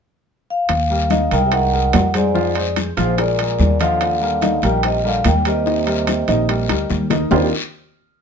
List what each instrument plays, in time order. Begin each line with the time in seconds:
0.50 vibraphone F5
0.69 upright bass D#2, high bongo, high conga, high timbale, long guiro
0.90 grand piano G3 G4 A#4, high conga
1.10 grand piano D#3 D#4 D#5, high bongo, high conga, high timbale, short guiro
1.31 upright bass C2, trombone D#3, grand piano G#3 G#4 A#4, vibraphone G5, high bongo, high conga, high timbale, short guiro
1.45 trombone C3, vibraphone E5
1.52 trombone D#3, vibraphone F#5, high bongo, high conga, high timbale, long guiro
1.73 grand piano G#3 G#4 A#4, high bongo, high conga
1.93 upright bass F2, high bongo, low bongo, high conga, high timbale, low timbale, short guiro
2.14 trombone G#2, grand piano G#3 G#4 C5, vibraphone D5, high bongo, high conga, high timbale, short guiro
2.34 grand piano F3 F4 F5, high bongo, high conga, long guiro
2.55 grand piano G#3 G#4 C5, high conga, high timbale
2.76 high bongo, high conga, high timbale, short guiro
2.97 upright bass A#1, trombone G#2, grand piano F3 F4 F5, vibraphone C5, high bongo, high conga, high timbale, short guiro
3.17 trombone A#2, grand piano G#3 G#4 A#4, vibraphone D5, high bongo, high conga, high timbale, long guiro
3.38 grand piano G#3 G#4 A#4, high bongo, high conga, high timbale
3.59 upright bass D#2, high bongo, low bongo, high conga, short guiro
3.80 trombone D3, grand piano F3 F4 D#5, vibraphone F5, high bongo, high timbale, short guiro
4.01 high bongo, high conga, high timbale, long guiro
4.21 grand piano G3 G4 A#4, high conga
4.41 grand piano D#3 D#4 D#5, high bongo, high conga, high timbale, short guiro
4.62 upright bass A#1, trombone D#3, grand piano G3 G4 A#4, vibraphone G5, high bongo, high conga, high timbale, short guiro
4.83 trombone C3, vibraphone D#5, high bongo, high conga, high timbale, long guiro
5.04 trombone D3, grand piano G3 G4 A#4, vibraphone F5, high bongo, high conga
5.24 upright bass D#2, trombone D#3, vibraphone G5, high bongo, low bongo, high conga, high timbale, short guiro
5.45 trombone C3, grand piano G3 G4 A#4, vibraphone D#5, high bongo, high timbale, short guiro
5.66 grand piano D#3 D#4 D#5, high bongo, high conga, long guiro
5.86 grand piano G3 G4 A#4, high conga, high timbale
6.07 high bongo, high conga, high timbale, short guiro
6.28 upright bass A#1, grand piano D#3 D#4 D#5, high bongo, high conga, high timbale, short guiro
6.49 grand piano G3 G4 A#4, high bongo, high conga, high timbale, long guiro
6.69 upright bass D2, grand piano G3 G4 A#4, high bongo, high conga, high timbale
6.90 upright bass D#2, low bongo, high conga, short guiro
7.10 grand piano D#3 D#4 D#5, low bongo, high timbale, short guiro
7.31 upright bass D#2, grand piano D#3 A#3 C4 D4 D#4 F4, trombone G3, vibraphone A#4, low bongo, low conga, low timbale, long guiro